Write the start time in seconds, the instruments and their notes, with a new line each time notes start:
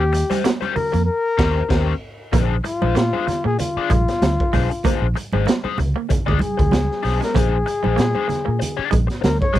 Already playing: fingered electric bass D#2, trumpet G4
0.13 muted overdriven electric guitar stroke, muted clean electric guitar stroke, closed hi-hat, muted conga
0.30 clean electric guitar G3, overdriven electric guitar C#4 G4 C5, closed hi-hat, high conga
0.44 clean electric guitar A#3, muted overdriven electric guitar stroke, snare, closed hi-hat, muted conga
0.61 overdriven electric guitar C#4 G4 C5, closed hi-hat, high conga
0.76 trumpet A#4, muted overdriven electric guitar stroke, muted clean electric guitar stroke, muted fingered electric bass stroke, open hi-hat, muted conga, low conga
0.92 fingered electric bass F2, clean electric guitar A#3, muted overdriven electric guitar stroke, closed hi-hat
1.06 trumpet A#4
1.38 fingered electric bass D#2, overdriven electric guitar C#4 G4 C5, kick, snare, crash
1.69 fingered electric bass D#2, overdriven electric guitar C#4 G4 C5, kick, snare, crash
2.32 fingered electric bass A#1, clean electric guitar A#3, overdriven electric guitar D4 G#4 C5, kick, closed hi-hat, low conga
2.64 trumpet F4, muted overdriven electric guitar stroke, muted clean electric guitar stroke, closed hi-hat, muted conga
2.82 fingered electric bass A#1, clean electric guitar G#3, overdriven electric guitar D4 G#4 C5, high conga
2.95 fingered electric bass A#2, clean electric guitar A#3, muted overdriven electric guitar stroke, snare, closed hi-hat, muted conga
3.13 overdriven electric guitar D4 G#4 C5, high conga
3.27 muted overdriven electric guitar stroke, muted clean electric guitar stroke, muted fingered electric bass stroke, snare, closed hi-hat, low conga
3.44 fingered electric bass A#2, clean electric guitar A#3, trumpet G#4, muted overdriven electric guitar stroke
3.59 trumpet F4, muted overdriven electric guitar stroke, closed hi-hat, muted conga, low conga
3.77 overdriven electric guitar D4 G#4 D5, muted fingered electric bass stroke
3.90 fingered electric bass A#1, clean electric guitar G#3, muted overdriven electric guitar stroke, kick, closed hi-hat, muted conga, high conga
4.08 muted overdriven electric guitar stroke, snare, closed hi-hat
4.22 fingered electric bass D2, muted overdriven electric guitar stroke, snare, closed hi-hat, muted conga, high conga
4.40 kick
4.53 fingered electric bass B1, clean electric guitar G#3, overdriven electric guitar D4 G#4 C5, kick, snare, open hi-hat, muted conga
4.70 muted overdriven electric guitar stroke, closed hi-hat
4.84 clean electric guitar A#3, overdriven electric guitar D4 G#4 C5, kick, closed hi-hat, muted conga, low conga
5.02 fingered electric bass A#1
5.15 muted clean electric guitar stroke, muted overdriven electric guitar stroke, closed hi-hat, muted conga
5.33 fingered electric bass G#1, clean electric guitar G#3, overdriven electric guitar D4 G#4 C5, high conga
5.46 clean electric guitar A#3, muted overdriven electric guitar stroke, snare, closed hi-hat, muted conga
5.64 overdriven electric guitar D4 G#4 C5, muted fingered electric bass stroke, high conga
5.78 fingered electric bass C#2, muted clean electric guitar stroke, muted overdriven electric guitar stroke, closed hi-hat, low conga
5.96 clean electric guitar A#3, muted overdriven electric guitar stroke
6.09 muted overdriven electric guitar stroke, muted fingered electric bass stroke, kick, closed hi-hat, muted conga, low conga
6.26 fingered electric bass D2, clean electric guitar G#3, overdriven electric guitar D4 G#4 D5, kick
6.39 trumpet G#4, muted overdriven electric guitar stroke, muted clean electric guitar stroke, closed hi-hat, muted conga, high conga
6.57 fingered electric bass D2, clean electric guitar F3, muted overdriven electric guitar stroke, kick, closed hi-hat
6.71 fingered electric bass C#2, clean electric guitar F3, muted overdriven electric guitar stroke, snare, closed hi-hat, muted conga, high conga
6.91 snare
7.03 fingered electric bass B1, overdriven electric guitar D4 G#4 C5, muted clean electric guitar stroke, snare, open hi-hat, muted conga
7.21 clean electric guitar G#3, trumpet A#4, muted overdriven electric guitar stroke, snare, closed hi-hat
7.34 fingered electric bass A#1, clean electric guitar A#3, overdriven electric guitar D4 G#4 C5, trumpet G#4, kick, closed hi-hat, muted conga, low conga
7.66 muted clean electric guitar stroke, muted overdriven electric guitar stroke, closed hi-hat, muted conga
7.83 fingered electric bass A#1, clean electric guitar G#3, overdriven electric guitar D4 G#4 C5, high conga
7.96 fingered electric bass A#2, clean electric guitar A#3, muted overdriven electric guitar stroke, snare, closed hi-hat, muted conga
8.15 overdriven electric guitar D4 G#4 C5, high conga
8.28 muted clean electric guitar stroke, muted overdriven electric guitar stroke, muted fingered electric bass stroke, snare, closed hi-hat, low conga
8.45 fingered electric bass A#2, clean electric guitar A#3, muted overdriven electric guitar stroke
8.59 muted overdriven electric guitar stroke, closed hi-hat, muted conga, low conga
8.77 overdriven electric guitar D4 G#4 D5, muted fingered electric bass stroke
8.90 fingered electric bass A#1, clean electric guitar G#3, muted overdriven electric guitar stroke, kick, closed hi-hat, high conga
9.07 muted overdriven electric guitar stroke, snare, closed hi-hat
9.21 fingered electric bass D2, trumpet A#4, muted overdriven electric guitar stroke, snare, closed hi-hat, muted conga, high conga
9.41 trumpet C#5, kick
9.53 fingered electric bass B1, clean electric guitar G#3, overdriven electric guitar D4 G#4 C5, kick, snare, open hi-hat, muted conga